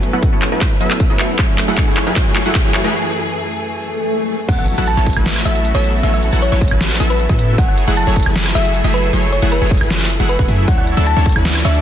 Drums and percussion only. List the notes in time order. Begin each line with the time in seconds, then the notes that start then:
0.03 closed hi-hat
0.23 kick, closed hi-hat
0.42 clap, closed hi-hat
0.61 kick, clap, closed hi-hat
0.81 closed hi-hat
0.91 clap
1.00 kick, closed hi-hat
1.19 clap, closed hi-hat
1.39 kick, clap, closed hi-hat
1.58 clap, closed hi-hat
1.77 kick, clap, closed hi-hat
1.97 clap, closed hi-hat
2.16 kick, clap, closed hi-hat
2.36 clap, closed hi-hat
2.55 kick, clap, closed hi-hat
2.74 clap, closed hi-hat
4.49 kick, closed hi-hat, crash
4.68 closed hi-hat
4.78 closed hi-hat
4.87 closed hi-hat
5.07 kick, closed hi-hat
5.10 closed hi-hat
5.13 closed hi-hat, high woodblock
5.26 snare, closed hi-hat
5.36 high woodblock
5.45 closed hi-hat
5.55 closed hi-hat
5.65 closed hi-hat
5.84 closed hi-hat
6.03 closed hi-hat
6.23 closed hi-hat
6.33 closed hi-hat
6.42 closed hi-hat
6.61 kick, closed hi-hat
6.65 closed hi-hat
6.68 closed hi-hat, high woodblock
6.81 snare, closed hi-hat
7.00 closed hi-hat
7.10 closed hi-hat
7.20 closed hi-hat
7.29 kick
7.39 closed hi-hat
7.58 kick, closed hi-hat
7.78 closed hi-hat
7.88 closed hi-hat
7.97 closed hi-hat
8.16 kick, closed hi-hat
8.20 closed hi-hat
8.23 closed hi-hat, high woodblock
8.36 snare, closed hi-hat
8.46 high woodblock
8.55 closed hi-hat
8.65 closed hi-hat
8.74 closed hi-hat
8.94 closed hi-hat
9.13 closed hi-hat
9.32 closed hi-hat
9.42 closed hi-hat
9.52 closed hi-hat
9.71 kick, closed hi-hat
9.74 closed hi-hat
9.78 closed hi-hat, high woodblock
9.90 snare, closed hi-hat
10.10 closed hi-hat
10.20 closed hi-hat
10.29 closed hi-hat
10.39 kick
10.48 closed hi-hat
10.68 kick, closed hi-hat
10.87 closed hi-hat
10.97 closed hi-hat
11.06 closed hi-hat
11.26 kick, closed hi-hat
11.29 closed hi-hat
11.32 closed hi-hat, high woodblock
11.45 snare, closed hi-hat
11.55 high woodblock
11.65 closed hi-hat
11.75 closed hi-hat